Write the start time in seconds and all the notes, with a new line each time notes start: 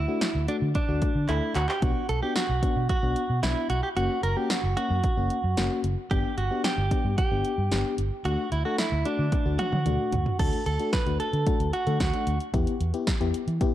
Already playing: E4
0.08 A3 D4 F#4
0.21 snare, closed hi-hat
0.35 D2
0.48 A3 D4 F#4, closed hi-hat
0.62 D3
0.75 D4, kick, closed hi-hat
0.89 D2 A3 D4 F#4
1.02 kick, closed hi-hat
1.15 D3
1.29 D2 A3 D4 E4 A4, clap, closed hi-hat
1.55 D2 F#4, clap, closed hi-hat
1.69 G4, clap
1.82 B1 B3 D4 F#4, kick, closed hi-hat
2.09 B1 A4, closed hi-hat
2.23 B3 D4 F#4 G4
2.36 F#4, snare, closed hi-hat
2.49 B1
2.63 B3 D4 F#4, kick, closed hi-hat
2.76 B2
2.89 F#4, kick, closed hi-hat
3.03 B1 B3 D4 F#4
3.16 closed hi-hat
3.30 B2
3.43 B1 B3 D4 E4, snare, closed hi-hat
3.70 B1 F#4, closed hi-hat
3.83 G4
3.97 F#1 A#3 C#4 F#4, closed hi-hat
4.23 F#1 A#4, closed hi-hat
4.37 A#3 C#4 F#4 G4
4.50 F#4, snare, closed hi-hat
4.64 F#1
4.77 A#3 C#4 F#4, closed hi-hat
4.90 F#2
5.04 kick, closed hi-hat
5.17 F#1 A#3 C#4 F#4
5.30 closed hi-hat
5.44 F#2
5.57 F#1 A#3 C#4 F#4, snare, closed hi-hat
5.84 F#1, closed hi-hat
6.11 G1 B3 D4 G4, kick, closed hi-hat
6.38 G1 F#4, closed hi-hat
6.51 B3 D4 G4
6.64 G4, snare, closed hi-hat
6.78 G1
6.91 B3 D4 G4, kick, closed hi-hat
7.05 G2
7.18 G4, kick, closed hi-hat
7.31 G1 B3 D4 G4
7.45 closed hi-hat
7.58 G2
7.71 G1 B3 D4 G4, snare, closed hi-hat
7.98 G1, closed hi-hat
8.25 D2 A3 D4 F#4, closed hi-hat
8.52 D2 E4, closed hi-hat
8.65 A3 D4 F#4 A4
8.78 E4, snare, closed hi-hat
8.92 D2
9.05 A3 D4 F#4, closed hi-hat
9.19 D3
9.32 kick, closed hi-hat, high tom
9.46 D2 A3 D4 F#4
9.59 F#4, closed hi-hat, mid tom
9.72 D3, mid tom
9.86 D2 A3 D4 F#4, closed hi-hat, mid tom
10.12 D2, closed hi-hat, floor tom
10.26 floor tom
10.39 D2 A3 D4 F#4 A4, kick, closed hi-hat, crash
10.53 closed hi-hat
10.66 D2 A4, closed hi-hat
10.80 A3 D4 F#4, closed hi-hat
10.93 B4, kick, snare, closed hi-hat
11.06 D2 A3 D4 F#4, closed hi-hat
11.20 A4, closed hi-hat
11.33 D3, closed hi-hat
11.47 A3 D4 F#4, kick, closed hi-hat
11.60 D2, closed hi-hat
11.73 F#4, closed hi-hat
11.87 D3 A3 D4 A4, closed hi-hat
12.00 D2 F#4, kick, snare, closed hi-hat
12.14 A3 D4 F#4, closed hi-hat
12.27 D2, closed hi-hat
12.40 closed hi-hat
12.54 E2 B3 E4 G4, kick, closed hi-hat
12.67 closed hi-hat
12.80 E2, closed hi-hat
12.94 B3 E4 G4, closed hi-hat
13.07 kick, snare, closed hi-hat
13.21 E2 B3 E4 G4, closed hi-hat
13.34 closed hi-hat
13.47 E3, closed hi-hat
13.61 B3 E4 G4, kick, closed hi-hat